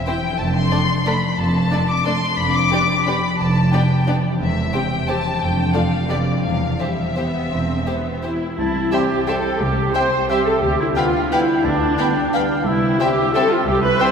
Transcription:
Already playing: harp E3 E4 G4 C5
0.06 viola section C4 E4, violin section G4 C5 G5
0.21 harp F3
0.26 harp D4
0.30 harp A4
0.34 harp D5
0.39 double bass section F1, cello section F2, violin section A5
0.56 violin section C6
0.72 viola section A3 D4, violin section A4 D5
1.05 viola section A3 D4, violin section A4 D5 B5
1.39 double bass section F1, cello section F2, violin section A5
1.71 viola section A3 D4, violin section A4 D5
1.89 violin section D6
2.06 viola section A3 D4, violin section A4 D5 C6
2.21 harp F3
2.26 harp D4
2.30 harp G4
2.35 harp B4, violin section B5
2.39 double bass section F1, cello section F2
2.54 violin section D6
2.72 viola section B3 D4, violin section G4 D5
3.07 viola section B3 D4, violin section G4 D5 B5
3.39 double bass section F1, cello section F2, violin section A5
3.73 viola section B3 D4, violin section G4 D5 G5
4.07 viola section B3 D4, violin section G4 D5
4.22 harp E3
4.27 harp C4
4.31 harp G4
4.36 harp C5
4.40 double bass section E1, cello section E2, violin section E5
4.74 viola section C4 G4, violin section G4 C5 G5
5.08 viola section C4 G4, violin section G4 C5 A5
5.23 harp F3
5.28 harp D4
5.32 harp F4
5.37 harp A4
5.41 double bass section F1, cello section F2, violin section G5
5.74 viola section A3 F4, violin section A4 D5 F5
5.92 harp F3
5.96 harp D4
6.00 harp G4
6.05 viola section B3, harp B4
6.09 double bass section F1, cello section F2, viola section G4, violin section G4 D5
6.26 harp E3
6.31 harp C4
6.35 harp G4
6.40 harp C5
6.44 double bass section E1, cello section E2, violin section F5
6.80 viola section G3, violin section G4 C5 E5
7.16 viola section B3, violin section G4 C5
7.52 double bass section E1, cello section E2, viola section C4
7.87 viola section B3, violin section G4 C5
8.23 viola section E4, violin section G4 C5
8.58 cello section C2, double bass section C2, harp C3, clarinet E4, viola section E4, oboe A5
8.75 harp G3
8.92 french horn section G3 C4, harp C4, bassoon C4, viola section G4, clarinet G4, violin section E5 G5 C6, flute section G5, oboe G5
9.11 harp G4
9.27 french horn section G3 C4, bassoon C4, viola section A4, clarinet A4, violin section E5 G5 C6, flute section G5
9.45 harp G4
9.61 cello section C2, double bass section C2, harp C3, viola section G4, clarinet G4
9.77 harp G3
9.94 french horn section G3 C4, harp C4, bassoon C4, viola section C5, clarinet C5, violin section E5 G5 C6, flute section G5
10.12 harp G4
10.30 french horn section G3 C4, bassoon C4, viola section G4, clarinet G4, harp C5, violin section E5 G5 C6, oboe E5, flute section G5
10.46 harp G4, viola section A4, clarinet A4
10.63 cello section D2, double bass section D2, harp D3, clarinet G4, viola section G4
10.80 harp D4, clarinet E4, viola section E4
10.96 french horn section G3 B3, bassoon B3, viola section F4, harp F4, clarinet F4, oboe F5, violin section F5 G5 B5, flute section G5
11.15 harp G4
11.31 french horn section G3 B3, bassoon B3, clarinet E4, viola section E4, harp B4, violin section F5 G5 B5, flute section G5, oboe G5
11.48 harp G4
11.64 double bass section D2, cello section D2, harp D3, viola section D4, clarinet D4, oboe A5
11.81 harp D4
11.99 french horn section G3 B3, bassoon B3, harp F4, violin section F5 G5 B5, flute section G5, oboe G5
12.17 harp G4
12.34 french horn section G3 B3, bassoon B3, harp B4, violin section F5 G5 B5, oboe F5, flute section G5
12.51 harp G4
12.66 double bass section C2, cello section C2, harp C3, viola section E4, clarinet E4, oboe E5
12.83 harp G3
13.00 french horn section G3 C4, bassoon C4, clarinet G4, viola section G4, violin section E5 G5 C6, flute section G5
13.34 french horn section G3 C4, bassoon C4, viola section A4, clarinet A4, harp C5, violin section E5 G5 C6, flute section G5
13.51 viola section F4, clarinet F4, harp G4
13.67 double bass section C2, cello section C2, harp C3, viola section G4, clarinet G4, oboe E5
13.83 harp G3, viola section B4, clarinet B4
14.00 french horn section G3 C4, bassoon C4, harp E4, viola section C5, clarinet C5, violin section E5 G5 C6, flute section G5

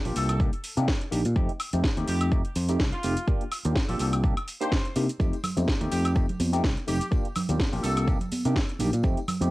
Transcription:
0.05 fingered electric bass A#1, tine electric piano A#3 D4 F4 G4, open hi-hat
0.16 fingered electric bass C2, horn section A4, open hi-hat, shaker
0.29 closed hi-hat, high woodblock, shaker
0.40 tine electric piano A#3 D4 D#4 G4, kick, shaker
0.53 closed hi-hat
0.64 open hi-hat, shaker
0.77 fingered electric bass C3, tine electric piano A#3 D4 D#4 G4, closed hi-hat, shaker
0.88 kick, snare, shaker
1.01 closed hi-hat
1.11 fingered electric bass A#1, tine electric piano A#3 D4 D#4 G4, open hi-hat, shaker
1.25 fingered electric bass A#2, closed hi-hat, shaker
1.35 fingered electric bass F2, tine electric piano A3 C4 D#4 G4, kick, shaker
1.49 closed hi-hat
1.60 open hi-hat, high woodblock, shaker
1.73 fingered electric bass F2, tine electric piano A3 C4 D#4 G4, closed hi-hat, shaker
1.84 kick, snare, shaker
1.97 fingered electric bass D#2, tine electric piano A3 C4 D#4 G4, closed hi-hat
2.08 fingered electric bass F2, horn section G4, open hi-hat, shaker
2.21 closed hi-hat, high woodblock, shaker
2.31 tine electric piano A3 C4 D#4 G4, kick, shaker
2.45 closed hi-hat
2.56 fingered electric bass F2, open hi-hat, shaker
2.69 tine electric piano A3 C4 D#4 G4, closed hi-hat, shaker
2.80 kick, snare, shaker
2.92 horn section F4, closed hi-hat
3.03 fingered electric bass F1, tine electric piano A3 C4 D#4 G4, open hi-hat, shaker
3.17 closed hi-hat, shaker
3.27 tine electric piano A#3 D4 F4 G4, kick, shaker
3.41 closed hi-hat
3.52 open hi-hat, high woodblock, shaker
3.65 fingered electric bass D#2, tine electric piano A#3 D4 F4 G4, closed hi-hat, shaker
3.76 kick, snare, shaker
3.89 fingered electric bass A#1, tine electric piano A#3 D4 F4 G4, horn section A4, open hi-hat
3.99 fingered electric bass C2, horn section A4, open hi-hat, shaker
4.13 closed hi-hat, high woodblock, shaker
4.24 tine electric piano A#3 D4 D#4 G4, kick, shaker
4.37 closed hi-hat, high woodblock
4.48 open hi-hat, shaker
4.60 tine electric piano A#3 D4 D#4 G4, horn section C5, closed hi-hat, shaker
4.72 kick, snare, shaker
4.85 closed hi-hat
4.96 fingered electric bass C3, tine electric piano A#3 D4 D#4 G4, open hi-hat, shaker
5.09 closed hi-hat, shaker
5.19 fingered electric bass F2, tine electric piano A3 C4 D#4 G4, kick, tambourine, shaker
5.33 closed hi-hat, tambourine
5.44 open hi-hat, tambourine, low conga, high woodblock, shaker
5.56 fingered electric bass F2, tine electric piano A3 C4 D#4 G4, closed hi-hat, tambourine, high conga, shaker
5.68 kick, snare, tambourine, shaker
5.80 fingered electric bass D#2, tine electric piano A3 C4 D#4 G4, closed hi-hat, tambourine
5.91 fingered electric bass F2, horn section G4, open hi-hat, tambourine, shaker
6.05 closed hi-hat, tambourine, high woodblock, shaker
6.15 tine electric piano A3 C4 D#4 G4, kick, tambourine, shaker
6.29 closed hi-hat, tambourine, low conga
6.40 fingered electric bass F2, open hi-hat, tambourine, high conga, shaker
6.52 tine electric piano A3 C4 D#4 G4, closed hi-hat, tambourine, shaker
6.64 fingered electric bass C2, kick, snare, tambourine, shaker
6.77 closed hi-hat, tambourine
6.87 fingered electric bass F1, tine electric piano A3 C4 D#4 G4, horn section G4, open hi-hat, tambourine, low conga, shaker
7.01 closed hi-hat, shaker
7.11 tine electric piano A#3 D4 F4 G4, kick, tambourine, shaker
7.25 closed hi-hat, tambourine
7.36 open hi-hat, tambourine, low conga, high woodblock, shaker
7.49 fingered electric bass D#2, tine electric piano A#3 D4 F4 G4, closed hi-hat, tambourine, high conga, shaker
7.60 kick, snare, tambourine, shaker
7.72 fingered electric bass A#1, tine electric piano A#3 D4 F4 G4, open hi-hat, tambourine
7.83 fingered electric bass C2, horn section A4, open hi-hat, tambourine, shaker
7.97 closed hi-hat, tambourine, high woodblock, shaker
8.07 tine electric piano A#3 D4 D#4 G4, kick, tambourine, shaker
8.20 closed hi-hat, tambourine, low conga
8.31 open hi-hat, tambourine, high conga, shaker
8.44 fingered electric bass C3, tine electric piano A#3 D4 D#4 G4, closed hi-hat, tambourine, shaker
8.56 kick, snare, tambourine, shaker
8.69 closed hi-hat, tambourine
8.79 fingered electric bass A#1, tine electric piano A#3 D4 D#4 G4, open hi-hat, tambourine, low conga, shaker
8.93 fingered electric bass A#2, closed hi-hat, tambourine, shaker
9.03 fingered electric bass F2, tine electric piano A3 C4 D#4 G4, kick, tambourine, shaker
9.17 closed hi-hat, tambourine
9.28 open hi-hat, tambourine, low conga, high woodblock, shaker
9.41 fingered electric bass F2, tine electric piano A3 C4 D#4 G4, closed hi-hat, tambourine, high conga, shaker

